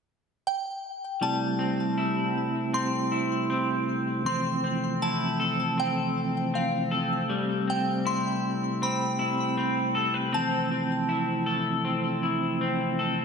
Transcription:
0.47 G5
1.21 C3 G3 A3 C4 E4 A5
1.59 C4
1.98 E4
2.73 C4 C6
3.12 E4
3.50 C4
4.24 E3 F3 C4 C6
4.64 C4
5.02 E4 A5
5.40 A4
5.78 C4 G5
6.54 C4 F5
6.91 A4
7.28 G3
7.67 C4 G5
8.05 E4 C6
8.82 C4 B5
9.19 E4
9.57 C4
9.95 A4
10.14 B4
10.33 E3 F3 C4 A5
10.71 C4
11.09 E4
11.46 A4
11.85 C4
12.23 E4
12.61 C4
12.99 A4

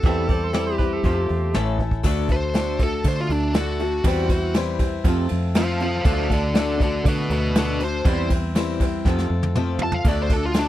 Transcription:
Already playing: A4
0.02 E2 E3 G3 C4 E5, kick, open hi-hat
0.07 C4 E4 C5
0.29 E3 G3 E4 C5 D5, kick, open hi-hat
0.33 C4
0.44 C5
0.53 E3 G3 C4 E4 C5 D5, snare, open hi-hat
0.67 C5
0.75 E4 G4 B4 C5, kick, open hi-hat
0.80 E3 G3 C4
0.93 A4
1.03 F2 C3 F3 A3 C4 F4 A4 C5, kick, open hi-hat
1.29 E2 F2 C3, open hi-hat
1.54 A1 A2 E3 A3 C#4 E4 A4, snare, open hi-hat
1.79 A2 E3 A3 C#4 E4 A4, kick
1.91 kick
2.03 D2 D3 A3 D4 F#4 A4, kick, crash
2.29 D3 A3 F#4 A4 C5, kick, ride
2.33 D4
2.54 D3 A3 D4 F#4 A4, snare, ride
2.79 D3 A3 D4 F#4 A4, kick, ride
3.04 D3 A3 D4 F#4 A4 C5, kick, ride
3.21 F4
3.29 D2 D3 A3 D4, ride
3.54 D3 A3 D4 F#4 A4, snare, ride
3.79 D3 A3 D4 F#4 A4, ride
4.04 E2 E3 G3 C4 E4 C5, kick, ride
4.29 E4 C5, kick, ride
4.33 C4
4.54 E3 G3 C4 E4 C5, snare, ride
4.79 E3 G3 C4 E4 C5, kick, ride
5.04 F2 C3 F3 A3 C4 F4 A4, kick, ride
5.29 F2 C3, ride
5.55 F2 C3 F3 A3 C4 F4 A4 C5 F5, snare, ride
5.80 F2 C3 C4 F4 A4 C5 F5, ride
6.04 D2 D3 A3 D4 F#4 A4 C5 F5, kick, ride
6.29 D3 A3 D4 F#4 A4 D5, kick, ride
6.54 D3 A3 D4 F#4 A4, snare, ride
6.59 A4 D5
6.77 D3 A3, kick, ride
6.82 D4 F#4 A4 D5
7.04 D3 A3 D4 F#4, kick, ride
7.08 F#4 A4 B4
7.29 D2 D3 A3 F#4 B4, ride
7.55 D3 A3 D4 F#4 A4, snare, ride
7.59 B4
7.79 D3 A3 A4, ride
7.84 D4 F#4 C5
8.05 E2 E3 G3 C4 E4 C5, kick, ride
8.30 E3 G3 C5, kick, ride
8.34 C4 E4
8.55 E3 G3 C4 E4 C5, snare, ride
8.80 E3 G3 E4 C5, kick, ride
8.85 C4
9.05 F2 C3 F3 A3 C4 F4 A4, kick, snare
9.19 snare
9.30 F2 C3
9.43 high tom
9.55 F2 C3 F3 A3 C4 F4 A4, mid tom
9.79 F2 C3, floor tom
9.83 C4 F4 A4 A5
9.92 F5, floor tom
10.04 D2 D3 A3 D4, kick, ride
10.09 A3 F#4 A4 D5
10.22 C5
10.29 D3 A3 A4, kick, ride
10.34 D4 F#4
10.46 F4
10.54 D3 A3, snare, ride
10.58 D4 F#4 A4

